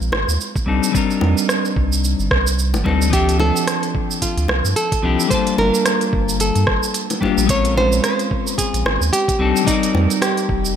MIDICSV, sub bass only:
0, 0, Header, 1, 2, 480
1, 0, Start_track
1, 0, Tempo, 545455
1, 832, Time_signature, 4, 2, 24, 8
1, 9471, End_track
2, 0, Start_track
2, 0, Title_t, "Sub bass"
2, 0, Program_c, 0, 38
2, 6, Note_on_c, 0, 34, 100
2, 93, Note_off_c, 0, 34, 0
2, 110, Note_on_c, 0, 32, 82
2, 224, Note_off_c, 0, 32, 0
2, 245, Note_on_c, 0, 39, 76
2, 333, Note_off_c, 0, 39, 0
2, 590, Note_on_c, 0, 36, 82
2, 704, Note_off_c, 0, 36, 0
2, 1071, Note_on_c, 0, 41, 88
2, 1185, Note_off_c, 0, 41, 0
2, 1551, Note_on_c, 0, 36, 86
2, 1891, Note_off_c, 0, 36, 0
2, 1930, Note_on_c, 0, 31, 105
2, 2015, Note_off_c, 0, 31, 0
2, 2032, Note_on_c, 0, 36, 85
2, 2408, Note_on_c, 0, 31, 96
2, 2421, Note_off_c, 0, 36, 0
2, 2494, Note_off_c, 0, 31, 0
2, 2513, Note_on_c, 0, 38, 88
2, 3092, Note_off_c, 0, 38, 0
2, 3846, Note_on_c, 0, 38, 106
2, 3933, Note_off_c, 0, 38, 0
2, 3949, Note_on_c, 0, 36, 84
2, 4064, Note_off_c, 0, 36, 0
2, 4086, Note_on_c, 0, 43, 75
2, 4173, Note_off_c, 0, 43, 0
2, 4432, Note_on_c, 0, 36, 83
2, 4545, Note_off_c, 0, 36, 0
2, 4912, Note_on_c, 0, 31, 87
2, 5025, Note_off_c, 0, 31, 0
2, 5393, Note_on_c, 0, 31, 82
2, 5732, Note_off_c, 0, 31, 0
2, 5769, Note_on_c, 0, 43, 104
2, 5855, Note_off_c, 0, 43, 0
2, 5873, Note_on_c, 0, 31, 82
2, 5986, Note_off_c, 0, 31, 0
2, 6486, Note_on_c, 0, 34, 97
2, 7043, Note_off_c, 0, 34, 0
2, 7688, Note_on_c, 0, 34, 104
2, 7774, Note_off_c, 0, 34, 0
2, 7790, Note_on_c, 0, 32, 88
2, 7904, Note_off_c, 0, 32, 0
2, 7926, Note_on_c, 0, 39, 80
2, 8013, Note_off_c, 0, 39, 0
2, 8271, Note_on_c, 0, 36, 85
2, 8385, Note_off_c, 0, 36, 0
2, 8751, Note_on_c, 0, 41, 94
2, 8865, Note_off_c, 0, 41, 0
2, 9231, Note_on_c, 0, 29, 92
2, 9471, Note_off_c, 0, 29, 0
2, 9471, End_track
0, 0, End_of_file